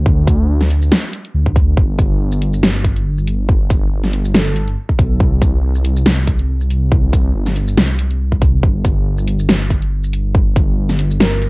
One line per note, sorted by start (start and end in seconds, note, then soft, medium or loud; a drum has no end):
0.00 0.47 D2 loud
0.06 kick loud
0.27 kick loud
0.27 closed hi-hat medium
0.27 shaker medium
0.49 0.90 D2 loud
0.61 snare soft
0.61 shaker medium
0.70 closed hi-hat medium
0.82 shaker medium
0.92 snare loud
1.13 closed hi-hat medium
1.25 closed hi-hat soft
1.34 1.76 D2 loud
1.46 kick medium
1.56 kick loud
1.56 closed hi-hat medium
1.77 2.62 G1 loud
1.77 kick loud
1.99 kick loud
1.99 closed hi-hat medium
1.99 shaker medium
2.32 shaker medium
2.42 closed hi-hat medium
2.54 shaker medium
2.63 3.90 G1 loud
2.63 snare loud
2.84 kick medium
2.84 closed hi-hat medium
2.96 closed hi-hat soft
3.18 shaker soft
3.27 closed hi-hat medium
3.49 kick loud
3.70 kick loud
3.70 closed hi-hat medium
3.70 shaker medium
3.92 4.76 G1 loud
4.04 snare soft
4.04 shaker medium
4.13 closed hi-hat medium
4.25 shaker medium
4.34 4.68 A4 medium
4.34 snare loud
4.56 closed hi-hat medium
4.68 closed hi-hat soft
4.89 kick medium
4.99 5.19 B1 loud
4.99 kick loud
4.99 closed hi-hat medium
5.20 6.04 C2 medium
5.20 kick loud
5.42 kick loud
5.42 closed hi-hat medium
5.42 shaker medium
5.75 shaker medium
5.85 closed hi-hat medium
5.96 shaker medium
6.06 7.33 C2 loud
6.06 snare loud
6.27 kick medium
6.27 closed hi-hat medium
6.39 closed hi-hat soft
6.61 shaker medium
6.70 closed hi-hat medium
6.92 kick loud
7.13 kick loud
7.13 closed hi-hat medium
7.13 shaker medium
7.35 7.76 G1 loud
7.46 snare soft
7.46 shaker medium
7.56 closed hi-hat medium
7.68 shaker medium
7.77 8.62 C2 medium
7.77 snare loud
7.99 closed hi-hat medium
8.11 closed hi-hat soft
8.32 kick medium
8.42 kick loud
8.42 closed hi-hat medium
8.63 9.47 G1 loud
8.63 kick loud
8.85 kick loud
8.85 closed hi-hat medium
8.85 shaker medium
9.18 shaker medium
9.28 closed hi-hat medium
9.39 shaker medium
9.49 10.76 G1 loud
9.49 snare loud
9.70 kick medium
9.70 closed hi-hat medium
9.82 closed hi-hat soft
10.04 shaker medium
10.13 closed hi-hat medium
10.35 kick loud
10.56 kick loud
10.56 closed hi-hat medium
10.56 shaker medium
10.78 11.49 G1 loud
10.89 snare soft
10.89 shaker medium
10.99 closed hi-hat medium
11.11 shaker medium
11.20 11.49 A#4 medium
11.20 snare loud
11.42 closed hi-hat medium